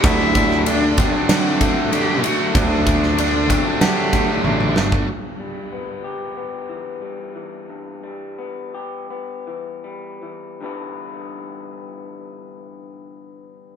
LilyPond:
<<
  \new Staff \with { instrumentName = "Cello" } { \time 4/4 \key g \major \tempo 4 = 92 e'4 d'8 d'8 c'4 g'8 fis'8 | d'2 g'4. r8 | r1 | r1 |
r1 | }
  \new Staff \with { instrumentName = "Distorted electric guitar" } { \time 4/4 \key g \major <d fis a d'>8 <d fis a d'>8 <d fis a d'>8 <d fis a d'>16 <fis a d'>8 <fis a d'>16 <d fis a d'>8 <d fis a d'>16 <fis a d'>16 <d fis a d'>16 <fis a d'>16 | <d fis a d'>8 <d fis a d'>8 <d fis a d'>8 <d fis a d'>16 <fis a d'>8 <fis a d'>16 <d fis a d'>8 <d fis a d'>16 <fis a d'>16 <d fis a d'>16 <fis a d'>16 | r1 | r1 |
r1 | }
  \new Staff \with { instrumentName = "Clean electric guitar" } { \clef bass \time 4/4 \key g \major d4 d8 c'4 a8 d8 a8 | d4 d8 c'4 a8 d8 a8 | g,8 g8 b8 g'8 b8 e8 g8 e8 | g,8 g8 b8 g'8 b8 e8 g8 e8 |
<g, d e g b e'>1 | }
  \new Staff \with { instrumentName = "Picked electric bass" } { \clef bass \time 4/4 \key g \major d,2 d2 | d,2 d4 a,,8 g,,8 | r1 | r1 |
r1 | }
  \new DrumStaff \with { instrumentName = "Drums" } \drummode { \time 4/4 <bd cymr>8 <bd cymr>16 sn16 cymr8 <bd cymr>8 <cymr sn>8 <bd cymr>8 cymr8 cymr8 | <bd cymr>8 <bd cymr>16 sn16 cymr8 <bd cymr>8 <cymr sn>8 <bd cymr>8 tommh16 toml16 sn16 bd16 | r4 r4 r4 r4 | r4 r4 r4 r4 |
r4 r4 r4 r4 | }
>>